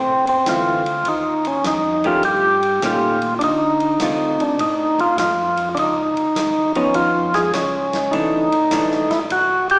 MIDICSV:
0, 0, Header, 1, 5, 480
1, 0, Start_track
1, 0, Tempo, 589391
1, 858, Time_signature, 4, 2, 24, 8
1, 7974, End_track
2, 0, Start_track
2, 0, Title_t, "Tonewheel organ"
2, 0, Program_c, 0, 16
2, 0, Note_on_c, 0, 60, 81
2, 208, Note_off_c, 0, 60, 0
2, 238, Note_on_c, 0, 60, 69
2, 391, Note_off_c, 0, 60, 0
2, 399, Note_on_c, 0, 65, 74
2, 879, Note_on_c, 0, 63, 81
2, 883, Note_off_c, 0, 65, 0
2, 1197, Note_off_c, 0, 63, 0
2, 1199, Note_on_c, 0, 61, 66
2, 1338, Note_off_c, 0, 61, 0
2, 1361, Note_on_c, 0, 63, 76
2, 1680, Note_off_c, 0, 63, 0
2, 1686, Note_on_c, 0, 65, 79
2, 1820, Note_off_c, 0, 65, 0
2, 1832, Note_on_c, 0, 67, 88
2, 2319, Note_off_c, 0, 67, 0
2, 2326, Note_on_c, 0, 65, 70
2, 2723, Note_off_c, 0, 65, 0
2, 2761, Note_on_c, 0, 62, 57
2, 2788, Note_off_c, 0, 62, 0
2, 2800, Note_on_c, 0, 63, 76
2, 3591, Note_on_c, 0, 62, 80
2, 3613, Note_off_c, 0, 63, 0
2, 3747, Note_off_c, 0, 62, 0
2, 3751, Note_on_c, 0, 63, 81
2, 4075, Note_off_c, 0, 63, 0
2, 4077, Note_on_c, 0, 65, 83
2, 4215, Note_off_c, 0, 65, 0
2, 4230, Note_on_c, 0, 65, 80
2, 4635, Note_off_c, 0, 65, 0
2, 4680, Note_on_c, 0, 62, 67
2, 4706, Note_off_c, 0, 62, 0
2, 4718, Note_on_c, 0, 63, 87
2, 5476, Note_off_c, 0, 63, 0
2, 5508, Note_on_c, 0, 61, 82
2, 5661, Note_on_c, 0, 65, 95
2, 5665, Note_off_c, 0, 61, 0
2, 5981, Note_on_c, 0, 68, 92
2, 5990, Note_off_c, 0, 65, 0
2, 6126, Note_off_c, 0, 68, 0
2, 6141, Note_on_c, 0, 61, 80
2, 6607, Note_on_c, 0, 63, 84
2, 6632, Note_off_c, 0, 61, 0
2, 7416, Note_on_c, 0, 64, 87
2, 7437, Note_off_c, 0, 63, 0
2, 7488, Note_off_c, 0, 64, 0
2, 7590, Note_on_c, 0, 66, 91
2, 7883, Note_off_c, 0, 66, 0
2, 7908, Note_on_c, 0, 67, 89
2, 7974, Note_off_c, 0, 67, 0
2, 7974, End_track
3, 0, Start_track
3, 0, Title_t, "Hollow-body jazz guitar"
3, 0, Program_c, 1, 26
3, 384, Note_on_c, 1, 52, 48
3, 393, Note_on_c, 1, 57, 48
3, 394, Note_on_c, 1, 60, 49
3, 671, Note_off_c, 1, 52, 0
3, 675, Note_off_c, 1, 57, 0
3, 676, Note_off_c, 1, 60, 0
3, 1666, Note_on_c, 1, 51, 58
3, 1670, Note_on_c, 1, 57, 58
3, 1673, Note_on_c, 1, 61, 63
3, 1677, Note_on_c, 1, 67, 64
3, 1805, Note_off_c, 1, 51, 0
3, 1807, Note_off_c, 1, 57, 0
3, 1808, Note_off_c, 1, 61, 0
3, 1810, Note_off_c, 1, 67, 0
3, 2300, Note_on_c, 1, 51, 51
3, 2300, Note_on_c, 1, 57, 55
3, 2306, Note_on_c, 1, 67, 51
3, 2307, Note_on_c, 1, 61, 51
3, 2588, Note_off_c, 1, 51, 0
3, 2588, Note_off_c, 1, 57, 0
3, 2591, Note_off_c, 1, 67, 0
3, 2592, Note_off_c, 1, 61, 0
3, 3264, Note_on_c, 1, 50, 43
3, 3273, Note_on_c, 1, 57, 45
3, 3273, Note_on_c, 1, 60, 46
3, 3278, Note_on_c, 1, 65, 49
3, 3550, Note_off_c, 1, 50, 0
3, 3554, Note_off_c, 1, 60, 0
3, 3555, Note_off_c, 1, 57, 0
3, 3557, Note_off_c, 1, 65, 0
3, 5504, Note_on_c, 1, 53, 61
3, 5507, Note_on_c, 1, 59, 66
3, 5511, Note_on_c, 1, 63, 76
3, 6107, Note_off_c, 1, 53, 0
3, 6108, Note_off_c, 1, 59, 0
3, 6110, Note_off_c, 1, 63, 0
3, 6621, Note_on_c, 1, 52, 52
3, 6623, Note_on_c, 1, 57, 54
3, 6627, Note_on_c, 1, 62, 57
3, 6908, Note_off_c, 1, 52, 0
3, 6909, Note_off_c, 1, 57, 0
3, 6911, Note_off_c, 1, 62, 0
3, 7102, Note_on_c, 1, 52, 54
3, 7107, Note_on_c, 1, 57, 53
3, 7108, Note_on_c, 1, 62, 54
3, 7389, Note_off_c, 1, 52, 0
3, 7391, Note_off_c, 1, 57, 0
3, 7391, Note_off_c, 1, 62, 0
3, 7974, End_track
4, 0, Start_track
4, 0, Title_t, "Tonewheel organ"
4, 0, Program_c, 2, 16
4, 54, Note_on_c, 2, 33, 50
4, 216, Note_off_c, 2, 33, 0
4, 221, Note_on_c, 2, 29, 58
4, 369, Note_off_c, 2, 29, 0
4, 378, Note_on_c, 2, 38, 89
4, 843, Note_off_c, 2, 38, 0
4, 867, Note_on_c, 2, 39, 81
4, 1328, Note_off_c, 2, 39, 0
4, 1341, Note_on_c, 2, 41, 80
4, 1805, Note_off_c, 2, 41, 0
4, 1811, Note_on_c, 2, 43, 78
4, 2279, Note_off_c, 2, 43, 0
4, 2299, Note_on_c, 2, 46, 80
4, 2763, Note_off_c, 2, 46, 0
4, 2777, Note_on_c, 2, 50, 74
4, 3242, Note_off_c, 2, 50, 0
4, 3260, Note_on_c, 2, 48, 76
4, 3723, Note_off_c, 2, 48, 0
4, 3738, Note_on_c, 2, 45, 68
4, 4202, Note_off_c, 2, 45, 0
4, 4219, Note_on_c, 2, 41, 86
4, 4683, Note_off_c, 2, 41, 0
4, 4695, Note_on_c, 2, 37, 81
4, 4995, Note_off_c, 2, 37, 0
4, 5022, Note_on_c, 2, 37, 36
4, 5099, Note_off_c, 2, 37, 0
4, 5176, Note_on_c, 2, 39, 80
4, 5641, Note_off_c, 2, 39, 0
4, 5654, Note_on_c, 2, 41, 74
4, 6120, Note_off_c, 2, 41, 0
4, 6144, Note_on_c, 2, 37, 84
4, 6606, Note_off_c, 2, 37, 0
4, 6622, Note_on_c, 2, 36, 77
4, 7084, Note_off_c, 2, 36, 0
4, 7101, Note_on_c, 2, 33, 85
4, 7398, Note_off_c, 2, 33, 0
4, 7428, Note_on_c, 2, 33, 36
4, 7504, Note_off_c, 2, 33, 0
4, 7581, Note_on_c, 2, 36, 75
4, 7974, Note_off_c, 2, 36, 0
4, 7974, End_track
5, 0, Start_track
5, 0, Title_t, "Drums"
5, 221, Note_on_c, 9, 51, 42
5, 302, Note_off_c, 9, 51, 0
5, 375, Note_on_c, 9, 38, 62
5, 375, Note_on_c, 9, 44, 65
5, 375, Note_on_c, 9, 51, 60
5, 457, Note_off_c, 9, 38, 0
5, 457, Note_off_c, 9, 44, 0
5, 457, Note_off_c, 9, 51, 0
5, 701, Note_on_c, 9, 51, 39
5, 782, Note_off_c, 9, 51, 0
5, 854, Note_on_c, 9, 51, 52
5, 935, Note_off_c, 9, 51, 0
5, 1177, Note_on_c, 9, 51, 41
5, 1259, Note_off_c, 9, 51, 0
5, 1338, Note_on_c, 9, 38, 62
5, 1338, Note_on_c, 9, 44, 52
5, 1338, Note_on_c, 9, 51, 61
5, 1419, Note_off_c, 9, 38, 0
5, 1419, Note_off_c, 9, 44, 0
5, 1419, Note_off_c, 9, 51, 0
5, 1660, Note_on_c, 9, 51, 38
5, 1742, Note_off_c, 9, 51, 0
5, 1815, Note_on_c, 9, 51, 54
5, 1896, Note_off_c, 9, 51, 0
5, 2139, Note_on_c, 9, 51, 42
5, 2220, Note_off_c, 9, 51, 0
5, 2298, Note_on_c, 9, 38, 62
5, 2298, Note_on_c, 9, 44, 60
5, 2298, Note_on_c, 9, 51, 59
5, 2379, Note_off_c, 9, 38, 0
5, 2379, Note_off_c, 9, 44, 0
5, 2379, Note_off_c, 9, 51, 0
5, 2619, Note_on_c, 9, 51, 40
5, 2700, Note_off_c, 9, 51, 0
5, 2777, Note_on_c, 9, 51, 56
5, 2859, Note_off_c, 9, 51, 0
5, 3096, Note_on_c, 9, 51, 37
5, 3177, Note_off_c, 9, 51, 0
5, 3254, Note_on_c, 9, 38, 61
5, 3254, Note_on_c, 9, 44, 55
5, 3254, Note_on_c, 9, 51, 65
5, 3335, Note_off_c, 9, 38, 0
5, 3335, Note_off_c, 9, 44, 0
5, 3335, Note_off_c, 9, 51, 0
5, 3583, Note_on_c, 9, 51, 40
5, 3664, Note_off_c, 9, 51, 0
5, 3739, Note_on_c, 9, 51, 57
5, 3821, Note_off_c, 9, 51, 0
5, 4061, Note_on_c, 9, 36, 50
5, 4066, Note_on_c, 9, 51, 42
5, 4142, Note_off_c, 9, 36, 0
5, 4147, Note_off_c, 9, 51, 0
5, 4218, Note_on_c, 9, 38, 65
5, 4218, Note_on_c, 9, 44, 60
5, 4218, Note_on_c, 9, 51, 62
5, 4299, Note_off_c, 9, 38, 0
5, 4299, Note_off_c, 9, 44, 0
5, 4299, Note_off_c, 9, 51, 0
5, 4538, Note_on_c, 9, 51, 43
5, 4620, Note_off_c, 9, 51, 0
5, 4698, Note_on_c, 9, 51, 52
5, 4779, Note_off_c, 9, 51, 0
5, 5023, Note_on_c, 9, 51, 38
5, 5104, Note_off_c, 9, 51, 0
5, 5180, Note_on_c, 9, 38, 58
5, 5180, Note_on_c, 9, 44, 53
5, 5180, Note_on_c, 9, 51, 60
5, 5262, Note_off_c, 9, 38, 0
5, 5262, Note_off_c, 9, 44, 0
5, 5262, Note_off_c, 9, 51, 0
5, 5499, Note_on_c, 9, 51, 43
5, 5580, Note_off_c, 9, 51, 0
5, 5653, Note_on_c, 9, 51, 55
5, 5734, Note_off_c, 9, 51, 0
5, 5977, Note_on_c, 9, 38, 51
5, 5977, Note_on_c, 9, 51, 43
5, 6058, Note_off_c, 9, 38, 0
5, 6058, Note_off_c, 9, 51, 0
5, 6135, Note_on_c, 9, 38, 63
5, 6135, Note_on_c, 9, 44, 59
5, 6135, Note_on_c, 9, 51, 59
5, 6217, Note_off_c, 9, 38, 0
5, 6217, Note_off_c, 9, 44, 0
5, 6217, Note_off_c, 9, 51, 0
5, 6459, Note_on_c, 9, 38, 57
5, 6459, Note_on_c, 9, 51, 40
5, 6540, Note_off_c, 9, 38, 0
5, 6540, Note_off_c, 9, 51, 0
5, 6620, Note_on_c, 9, 51, 50
5, 6701, Note_off_c, 9, 51, 0
5, 6940, Note_on_c, 9, 51, 43
5, 7022, Note_off_c, 9, 51, 0
5, 7093, Note_on_c, 9, 38, 63
5, 7093, Note_on_c, 9, 44, 61
5, 7093, Note_on_c, 9, 51, 62
5, 7174, Note_off_c, 9, 38, 0
5, 7174, Note_off_c, 9, 44, 0
5, 7174, Note_off_c, 9, 51, 0
5, 7258, Note_on_c, 9, 38, 28
5, 7339, Note_off_c, 9, 38, 0
5, 7415, Note_on_c, 9, 51, 42
5, 7417, Note_on_c, 9, 38, 38
5, 7497, Note_off_c, 9, 51, 0
5, 7498, Note_off_c, 9, 38, 0
5, 7576, Note_on_c, 9, 51, 57
5, 7657, Note_off_c, 9, 51, 0
5, 7895, Note_on_c, 9, 51, 42
5, 7974, Note_off_c, 9, 51, 0
5, 7974, End_track
0, 0, End_of_file